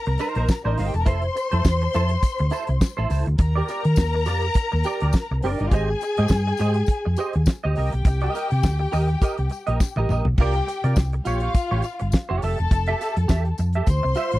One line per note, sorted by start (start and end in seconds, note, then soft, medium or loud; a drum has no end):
0.00 0.54 A#4 medium
0.00 0.54 A#5 medium
0.06 0.16 C2 medium
0.06 muted clean electric guitar stroke medium
0.06 closed hi-hat soft
0.18 0.37 D#4 medium
0.18 0.37 A#4 medium
0.18 0.35 C5 medium
0.18 closed hi-hat soft
0.18 tambourine medium
0.35 0.45 A#1 medium
0.35 0.48 D#4 soft
0.35 0.48 A#4 medium
0.35 0.48 C5 medium
0.35 closed hi-hat soft
0.48 muted clean electric guitar stroke soft
0.48 kick medium
0.48 snare medium
0.48 tambourine medium
0.64 0.74 A1 medium
0.64 0.71 D4 medium
0.64 0.77 D#4 medium
0.64 0.78 A#4 medium
0.64 0.78 C5 medium
0.64 0.71 D5 medium
0.72 0.78 D#4 medium
0.72 0.77 D#5 medium
0.77 0.90 G1 medium
0.77 0.93 D#4 medium
0.77 0.85 F4 medium
0.77 0.93 A#4 medium
0.77 0.93 C5 medium
0.77 0.85 F5 medium
0.77 snare soft
0.77 open hi-hat medium
0.86 0.94 G4 medium
0.86 0.94 G5 medium
0.93 1.07 E1 medium
0.93 1.00 A4 medium
0.93 1.00 A5 medium
0.93 muted clean electric guitar stroke soft
0.93 closed hi-hat soft
1.01 1.07 A#4 medium
1.01 1.07 A#5 medium
1.06 1.28 F1 loud
1.06 1.25 E4 loud
1.06 1.23 A4 medium
1.06 1.22 C5 loud
1.06 3.07 C5 medium
1.06 3.07 C6 loud
1.06 kick loud
1.06 closed hi-hat medium
1.06 tambourine soft
1.22 muted clean electric guitar stroke soft
1.22 closed hi-hat soft
1.36 muted clean electric guitar stroke soft
1.36 closed hi-hat medium
1.36 tambourine soft
1.52 1.62 F2 medium
1.52 1.64 E4 medium
1.52 1.64 A4 medium
1.52 1.63 C5 medium
1.52 closed hi-hat soft
1.65 1.86 E2 loud
1.65 kick loud
1.65 snare loud
1.65 tambourine medium
1.81 muted clean electric guitar stroke soft
1.81 closed hi-hat soft
1.94 2.16 F2 medium
1.94 2.13 E4 medium
1.94 2.11 A4 medium
1.94 2.09 C5 medium
1.94 closed hi-hat medium
1.94 tambourine medium
2.09 muted clean electric guitar stroke soft
2.09 closed hi-hat soft
2.22 kick medium
2.22 closed hi-hat medium
2.22 tambourine medium
2.38 2.49 D2 medium
2.38 muted clean electric guitar stroke medium
2.38 closed hi-hat soft
2.50 2.70 E4 medium
2.50 2.68 A4 medium
2.50 2.68 C5 medium
2.50 closed hi-hat soft
2.50 tambourine soft
2.67 2.78 C2 medium
2.67 muted clean electric guitar stroke soft
2.67 closed hi-hat soft
2.81 muted clean electric guitar stroke soft
2.81 kick loud
2.81 snare medium
2.81 tambourine medium
2.97 3.07 A1 medium
2.97 3.09 E4 medium
2.97 3.09 A4 medium
2.97 3.10 C5 medium
3.10 3.22 C#2 medium
3.10 3.25 E4 medium
3.10 3.25 A4 medium
3.10 3.26 C5 medium
3.10 open hi-hat medium
3.10 tambourine soft
3.26 3.36 D2 medium
3.26 muted clean electric guitar stroke soft
3.26 closed hi-hat soft
3.38 3.60 D#2 loud
3.38 5.34 A#4 medium
3.38 5.34 A#5 loud
3.38 muted clean electric guitar stroke soft
3.38 kick loud
3.38 closed hi-hat medium
3.38 tambourine soft
3.55 3.68 G4 medium
3.55 3.68 A#4 medium
3.55 3.69 D5 medium
3.68 3.84 G4 medium
3.68 3.84 A#4 medium
3.68 3.84 D5 medium
3.68 closed hi-hat medium
3.68 tambourine soft
3.85 3.94 D#3 medium
3.85 muted clean electric guitar stroke soft
3.85 closed hi-hat soft
3.96 4.27 D#2 loud
3.96 kick loud
3.96 snare loud
3.96 tambourine loud
4.13 muted clean electric guitar stroke soft
4.13 closed hi-hat soft
4.25 4.48 F2 medium
4.25 4.45 G4 medium
4.25 4.42 A#4 medium
4.25 4.41 D5 medium
4.25 closed hi-hat medium
4.25 tambourine medium
4.41 muted clean electric guitar stroke soft
4.41 closed hi-hat soft
4.54 muted clean electric guitar stroke soft
4.54 kick loud
4.54 closed hi-hat medium
4.54 tambourine medium
4.72 4.82 D#2 medium
4.72 muted clean electric guitar stroke soft
4.83 5.02 G4 medium
4.83 5.01 A#4 medium
4.83 5.01 D5 medium
4.83 closed hi-hat soft
4.83 tambourine soft
5.00 5.11 D2 medium
5.00 5.13 G4 medium
5.00 5.14 A#4 medium
5.00 5.13 D5 medium
5.00 closed hi-hat soft
5.13 muted clean electric guitar stroke soft
5.13 kick loud
5.13 snare medium
5.13 tambourine medium
5.31 5.40 C2 medium
5.31 muted clean electric guitar stroke soft
5.42 5.55 F#1 medium
5.42 5.51 C4 soft
5.42 5.61 G4 medium
5.42 5.60 A#4 medium
5.42 5.51 C5 medium
5.42 5.59 D5 medium
5.42 open hi-hat medium
5.51 5.59 D4 medium
5.51 5.59 D5 medium
5.59 5.69 G1 medium
5.59 5.66 D#4 medium
5.59 5.71 G4 soft
5.59 5.72 A#4 soft
5.59 5.72 D5 medium
5.59 5.66 D#5 medium
5.59 closed hi-hat soft
5.66 5.72 F4 medium
5.66 5.72 F5 medium
5.71 5.93 G#1 loud
5.71 5.91 G4 medium
5.71 7.44 G#4 medium
5.71 5.89 C5 loud
5.71 5.88 D#5 loud
5.71 7.44 G#5 medium
5.71 kick loud
5.71 closed hi-hat medium
5.71 tambourine soft
5.89 muted clean electric guitar stroke soft
6.01 muted clean electric guitar stroke soft
6.01 closed hi-hat medium
6.01 tambourine soft
6.17 6.28 G#2 medium
6.17 6.30 G4 medium
6.17 6.30 C5 medium
6.17 6.30 D#5 medium
6.17 closed hi-hat soft
6.28 6.52 G2 medium
6.28 kick loud
6.28 snare loud
6.28 tambourine medium
6.47 muted clean electric guitar stroke soft
6.57 6.81 G#2 medium
6.57 6.78 G4 medium
6.57 6.76 C5 medium
6.57 6.75 D#5 medium
6.57 closed hi-hat medium
6.57 tambourine medium
6.74 muted clean electric guitar stroke soft
6.74 closed hi-hat soft
6.86 kick loud
6.86 closed hi-hat medium
6.86 tambourine medium
7.05 7.15 F2 medium
7.05 muted clean electric guitar stroke soft
7.16 7.37 G4 medium
7.16 7.35 C5 medium
7.16 7.34 D#5 medium
7.16 closed hi-hat medium
7.16 tambourine medium
7.33 7.44 D#2 medium
7.33 muted clean electric guitar stroke soft
7.33 closed hi-hat soft
7.46 muted clean electric guitar stroke soft
7.46 kick loud
7.46 snare loud
7.46 tambourine medium
7.64 7.74 D2 medium
7.64 7.75 G4 medium
7.64 7.77 C5 medium
7.64 7.77 D#5 medium
7.76 7.89 C2 medium
7.76 7.92 G4 medium
7.76 10.06 G4 medium
7.76 7.92 A#4 medium
7.76 7.92 D#5 medium
7.76 10.06 G5 medium
7.76 open hi-hat medium
7.92 8.03 B1 medium
7.92 muted clean electric guitar stroke soft
7.92 closed hi-hat soft
8.05 8.27 C2 loud
8.05 muted clean electric guitar stroke soft
8.05 kick loud
8.05 closed hi-hat medium
8.05 tambourine soft
8.21 8.33 G4 medium
8.21 8.34 A#4 medium
8.21 8.35 D#5 medium
8.21 closed hi-hat soft
8.34 8.50 G4 medium
8.34 8.50 A#4 medium
8.34 8.49 D#5 medium
8.34 closed hi-hat medium
8.34 tambourine soft
8.50 8.61 C3 medium
8.50 muted clean electric guitar stroke soft
8.50 closed hi-hat soft
8.63 8.85 D2 medium
8.63 kick loud
8.63 snare loud
8.63 tambourine medium
8.79 muted clean electric guitar stroke soft
8.79 closed hi-hat soft
8.92 9.14 D#2 medium
8.92 9.11 G4 medium
8.92 9.09 A#4 medium
8.92 9.07 D#5 medium
8.92 open hi-hat medium
8.92 tambourine medium
9.08 muted clean electric guitar stroke soft
9.08 closed hi-hat soft
9.21 9.41 G4 medium
9.21 9.38 A#4 medium
9.21 9.37 D#5 medium
9.21 kick loud
9.21 closed hi-hat medium
9.21 tambourine medium
9.37 9.48 C2 medium
9.37 muted clean electric guitar stroke soft
9.37 closed hi-hat soft
9.49 muted clean electric guitar stroke soft
9.49 closed hi-hat medium
9.49 tambourine soft
9.67 9.77 A#1 medium
9.67 9.79 G4 medium
9.67 9.80 A#4 medium
9.67 9.79 D#5 medium
9.67 closed hi-hat soft
9.80 muted clean electric guitar stroke soft
9.80 kick loud
9.80 snare medium
9.80 tambourine medium
9.96 10.06 A1 medium
9.96 10.09 G4 medium
9.96 10.10 A#4 medium
9.96 10.10 D#5 medium
9.96 high tom medium
10.09 10.21 A#1 medium
10.09 10.25 G4 medium
10.09 10.26 A#4 medium
10.09 10.26 D#5 medium
10.09 mid tom medium
10.09 tambourine soft
10.25 10.35 B1 medium
10.25 muted clean electric guitar stroke soft
10.25 floor tom medium
10.38 10.60 C2 loud
10.38 10.58 F4 medium
10.38 10.96 G4 medium
10.38 10.55 A#4 loud
10.38 10.54 D5 loud
10.38 10.96 G5 medium
10.38 kick loud
10.38 crash medium
10.53 muted clean electric guitar stroke soft
10.53 closed hi-hat soft
10.67 muted clean electric guitar stroke soft
10.67 closed hi-hat medium
10.67 tambourine soft
10.84 10.93 C3 medium
10.84 10.96 F4 soft
10.84 10.96 A#4 medium
10.84 10.96 D5 medium
10.84 closed hi-hat soft
10.96 11.18 C2 medium
10.96 muted clean electric guitar stroke soft
10.96 kick loud
10.96 snare loud
10.96 tambourine medium
11.12 muted clean electric guitar stroke soft
11.12 closed hi-hat soft
11.25 11.47 A#1 medium
11.25 11.43 F4 medium
11.25 12.11 F4 medium
11.25 11.41 G4 medium
11.25 11.41 C#5 medium
11.25 12.11 F5 medium
11.25 closed hi-hat medium
11.25 tambourine medium
11.40 11.53 F4 soft
11.40 11.54 G4 medium
11.40 11.54 C#5 medium
11.40 closed hi-hat soft
11.54 muted clean electric guitar stroke soft
11.54 kick loud
11.54 closed hi-hat medium
11.54 tambourine medium
11.71 11.81 A1 medium
11.71 11.83 F4 medium
11.71 11.84 G4 medium
11.71 11.84 C#5 medium
11.82 muted clean electric guitar stroke soft
11.82 closed hi-hat soft
11.82 tambourine medium
11.99 12.10 G1 medium
11.99 muted clean electric guitar stroke medium
11.99 closed hi-hat soft
12.12 muted clean electric guitar stroke soft
12.12 kick loud
12.12 snare loud
12.12 tambourine medium
12.29 12.39 F1 medium
12.29 12.42 F4 medium
12.29 12.41 G4 medium
12.29 12.43 C#5 medium
12.42 12.55 F1 medium
12.42 12.58 G4 medium
12.42 13.56 A4 medium
12.42 12.58 A4 medium
12.42 12.57 E5 medium
12.42 13.56 A5 medium
12.42 open hi-hat medium
12.42 tambourine soft
12.58 12.69 E1 medium
12.58 muted clean electric guitar stroke soft
12.58 closed hi-hat soft
12.71 12.93 F1 loud
12.71 muted clean electric guitar stroke soft
12.71 kick loud
12.71 closed hi-hat medium
12.71 tambourine soft
12.86 13.00 G4 medium
12.86 13.00 A4 medium
12.86 13.01 E5 medium
12.86 closed hi-hat soft
13.01 13.16 G4 medium
13.01 13.16 A4 medium
13.01 13.16 E5 medium
13.01 closed hi-hat medium
13.01 tambourine soft
13.16 13.26 F2 medium
13.16 muted clean electric guitar stroke soft
13.16 closed hi-hat medium
13.28 13.51 E2 loud
13.28 13.48 G4 medium
13.28 13.45 A4 medium
13.28 13.43 E5 loud
13.28 kick loud
13.28 snare loud
13.28 tambourine medium
13.45 muted clean electric guitar stroke soft
13.45 closed hi-hat soft
13.58 13.80 F2 medium
13.58 muted clean electric guitar stroke soft
13.58 closed hi-hat medium
13.58 tambourine medium
13.73 13.88 G4 soft
13.73 13.87 A4 soft
13.73 13.87 E5 medium
13.73 closed hi-hat soft
13.86 13.99 D2 medium
13.86 14.39 C5 loud
13.86 14.39 C6 loud
13.86 kick loud
13.86 closed hi-hat medium
13.86 tambourine medium
14.03 14.13 C2 medium
14.03 muted clean electric guitar stroke medium
14.15 14.35 F4 medium
14.15 14.32 C5 medium
14.15 14.30 E5 medium
14.15 closed hi-hat medium
14.15 tambourine soft
14.32 14.39 A1 medium
14.32 muted clean electric guitar stroke soft
14.32 closed hi-hat soft